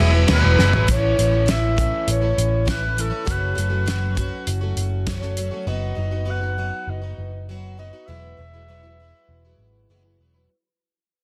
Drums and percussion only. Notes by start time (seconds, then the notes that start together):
0.28 snare, ride
0.59 snare
0.73 floor tom
0.88 kick, closed hi-hat
1.19 closed hi-hat
1.48 snare, closed hi-hat
1.78 kick, closed hi-hat
2.08 closed hi-hat
2.38 closed hi-hat
2.68 kick, snare, closed hi-hat
2.98 closed hi-hat
3.27 kick, closed hi-hat
3.58 closed hi-hat
3.88 snare, closed hi-hat
4.17 kick, closed hi-hat
4.47 closed hi-hat
4.77 closed hi-hat
5.07 kick, snare, closed hi-hat
5.22 snare
5.37 closed hi-hat